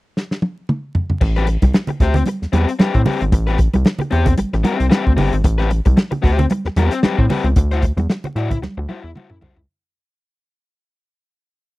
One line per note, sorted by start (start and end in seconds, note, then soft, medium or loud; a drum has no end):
0.17 snare medium
0.31 snare medium
0.42 high tom medium
0.69 mid tom medium
0.95 floor tom loud
1.10 floor tom medium
1.21 1.57 A1 loud
1.21 muted overdriven electric guitar stroke soft
1.21 kick loud
1.21 crash medium
1.21 muted conga soft
1.36 1.46 C4 medium
1.36 1.46 G4 medium
1.36 1.48 B4 loud
1.36 snare soft
1.36 closed hi-hat soft
1.47 muted overdriven electric guitar stroke soft
1.47 closed hi-hat medium
1.47 muted conga soft
1.62 1.73 C2 medium
1.62 muted overdriven electric guitar stroke soft
1.62 kick medium
1.62 closed hi-hat soft
1.62 high conga medium
1.74 muted overdriven electric guitar stroke soft
1.74 snare loud
1.74 muted conga soft
1.87 muted overdriven electric guitar stroke soft
1.87 closed hi-hat soft
1.87 low conga medium
2.00 2.23 D2 medium
2.00 2.22 C4 medium
2.00 2.16 G4 medium
2.00 2.15 C5 loud
2.00 kick medium
2.00 snare soft
2.00 closed hi-hat medium
2.14 muted overdriven electric guitar stroke soft
2.14 closed hi-hat medium
2.14 low conga medium
2.26 muted overdriven electric guitar stroke soft
2.26 closed hi-hat medium
2.26 high conga medium
2.42 2.47 E2 soft
2.42 snare soft
2.42 closed hi-hat soft
2.52 2.66 E2 medium
2.52 2.70 C4 medium
2.52 2.69 G4 medium
2.52 2.67 B4 medium
2.52 closed hi-hat medium
2.52 high conga medium
2.68 muted overdriven electric guitar stroke medium
2.68 closed hi-hat medium
2.79 3.00 C4 medium
2.79 2.95 G4 medium
2.79 2.93 B4 medium
2.79 snare loud
2.79 high conga medium
2.94 3.05 A2 loud
2.94 muted overdriven electric guitar stroke soft
2.94 kick medium
2.94 closed hi-hat soft
3.06 3.23 C4 medium
3.06 3.21 G4 medium
3.06 3.19 B4 medium
3.06 snare soft
3.06 open hi-hat medium
3.06 muted conga soft
3.06 high conga medium
3.06 low conga medium
3.21 3.31 G#1 medium
3.21 muted overdriven electric guitar stroke medium
3.21 closed hi-hat medium
3.32 3.68 A1 loud
3.32 muted overdriven electric guitar stroke soft
3.32 kick loud
3.32 closed hi-hat loud
3.32 muted conga soft
3.47 3.57 C4 medium
3.47 3.58 G4 medium
3.47 3.58 B4 medium
3.47 snare soft
3.47 closed hi-hat soft
3.58 muted overdriven electric guitar stroke soft
3.58 kick loud
3.58 closed hi-hat medium
3.58 muted conga soft
3.74 3.84 C2 medium
3.74 muted overdriven electric guitar stroke soft
3.74 closed hi-hat soft
3.74 high conga medium
3.85 muted overdriven electric guitar stroke soft
3.85 snare loud
3.85 muted conga soft
3.99 muted overdriven electric guitar stroke soft
3.99 closed hi-hat soft
3.99 low conga medium
4.11 4.35 E2 medium
4.11 4.32 C4 medium
4.11 4.27 G4 medium
4.11 4.26 C5 medium
4.11 closed hi-hat medium
4.11 muted conga soft
4.26 muted overdriven electric guitar stroke soft
4.26 kick medium
4.26 closed hi-hat medium
4.26 low conga medium
4.37 4.45 A1 soft
4.37 muted overdriven electric guitar stroke soft
4.37 closed hi-hat medium
4.37 high conga medium
4.53 4.64 A1 medium
4.53 muted overdriven electric guitar stroke soft
4.53 snare soft
4.53 closed hi-hat soft
4.63 4.85 C4 medium
4.63 4.78 G4 loud
4.63 4.76 B4 loud
4.63 closed hi-hat medium
4.63 muted conga soft
4.63 high conga medium
4.78 4.90 C2 medium
4.78 muted overdriven electric guitar stroke soft
4.78 closed hi-hat medium
4.90 5.12 C4 medium
4.90 5.05 G4 medium
4.90 5.03 B4 medium
4.90 snare loud
4.90 high conga medium
5.04 5.17 D2 medium
5.04 muted overdriven electric guitar stroke soft
5.04 kick medium
5.17 5.31 G1 medium
5.17 5.34 C4 medium
5.17 5.33 G4 medium
5.17 5.31 B4 medium
5.17 snare soft
5.17 open hi-hat medium
5.17 muted conga soft
5.17 high conga medium
5.17 low conga medium
5.32 5.43 G#1 medium
5.32 muted overdriven electric guitar stroke soft
5.32 closed hi-hat medium
5.44 5.81 A1 loud
5.44 muted overdriven electric guitar stroke soft
5.44 kick loud
5.44 closed hi-hat medium
5.44 muted conga soft
5.58 5.69 C4 medium
5.58 5.70 G4 medium
5.58 5.70 B4 medium
5.58 snare soft
5.58 closed hi-hat soft
5.70 muted overdriven electric guitar stroke soft
5.70 closed hi-hat medium
5.70 muted conga soft
5.85 5.96 C2 medium
5.85 muted overdriven electric guitar stroke soft
5.85 kick loud
5.85 closed hi-hat soft
5.85 high conga medium
5.97 muted overdriven electric guitar stroke soft
5.97 snare loud
5.97 muted conga soft
6.11 muted overdriven electric guitar stroke soft
6.11 closed hi-hat soft
6.11 low conga medium
6.22 6.47 D2 loud
6.22 6.44 C4 medium
6.22 6.38 G4 loud
6.22 6.38 C5 medium
6.22 kick medium
6.22 snare soft
6.22 open hi-hat soft
6.38 muted overdriven electric guitar stroke soft
6.38 closed hi-hat medium
6.38 low conga medium
6.50 muted overdriven electric guitar stroke soft
6.50 closed hi-hat medium
6.50 muted conga soft
6.50 high conga medium
6.65 6.70 E2 medium
6.65 muted overdriven electric guitar stroke soft
6.65 snare soft
6.76 6.90 E2 medium
6.76 6.98 C4 loud
6.76 6.93 G4 loud
6.76 6.91 B4 loud
6.76 closed hi-hat medium
6.76 muted conga soft
6.76 high conga medium
6.91 muted overdriven electric guitar stroke soft
6.91 snare soft
6.91 closed hi-hat medium
7.03 7.24 C4 medium
7.03 7.17 G4 medium
7.03 7.16 B4 medium
7.03 snare loud
7.03 high conga medium
7.17 7.29 A2 loud
7.17 muted overdriven electric guitar stroke medium
7.17 kick medium
7.30 7.47 C4 medium
7.30 7.45 G4 medium
7.30 7.44 B4 medium
7.30 snare soft
7.30 open hi-hat medium
7.30 muted conga soft
7.30 high conga medium
7.30 low conga medium
7.44 7.54 C#2 medium
7.44 muted overdriven electric guitar stroke soft
7.44 closed hi-hat soft
7.56 7.92 D2 loud
7.56 muted overdriven electric guitar stroke soft
7.56 kick loud
7.56 closed hi-hat medium
7.56 muted conga soft
7.71 7.82 E4 medium
7.71 7.83 F#4 medium
7.71 7.84 C5 medium
7.71 snare soft
7.71 closed hi-hat soft
7.82 muted overdriven electric guitar stroke soft
7.82 kick medium
7.82 closed hi-hat medium
7.82 muted conga soft
7.97 8.07 E2 medium
7.97 muted overdriven electric guitar stroke soft
7.97 closed hi-hat soft
7.97 high conga medium
8.10 muted overdriven electric guitar stroke soft
8.10 snare loud
8.24 muted overdriven electric guitar stroke medium
8.24 closed hi-hat soft
8.24 low conga medium
8.36 8.59 A2 medium
8.36 8.57 E4 medium
8.36 8.50 F#4 medium
8.36 8.50 D5 medium
8.36 snare soft
8.36 closed hi-hat medium
8.36 muted conga soft
8.51 muted overdriven electric guitar stroke soft
8.51 kick loud
8.51 closed hi-hat medium
8.51 low conga medium
8.62 8.68 D2 soft
8.62 muted overdriven electric guitar stroke soft
8.62 snare medium
8.62 muted conga soft
8.62 high conga medium
8.77 8.87 D2 medium
8.77 muted overdriven electric guitar stroke soft
8.89 9.10 E4 medium
8.89 9.04 F#4 medium
8.89 9.02 C5 medium
8.89 high tom medium
8.89 high conga medium
9.03 9.14 E2 medium
9.03 muted overdriven electric guitar stroke soft
9.15 9.37 E4 medium
9.15 9.30 F#4 medium
9.15 9.29 C5 medium
9.15 mid tom medium
9.15 high conga medium
9.30 9.40 F#2 medium
9.30 muted overdriven electric guitar stroke medium
9.30 mid tom medium
9.41 9.55 C2 medium
9.41 9.59 E4 medium
9.41 9.57 F#4 medium
9.41 9.55 C5 medium
9.41 floor tom medium
9.41 muted conga soft
9.41 high conga medium
9.41 low conga medium
9.56 9.67 C#2 medium
9.56 muted overdriven electric guitar stroke soft
9.56 floor tom medium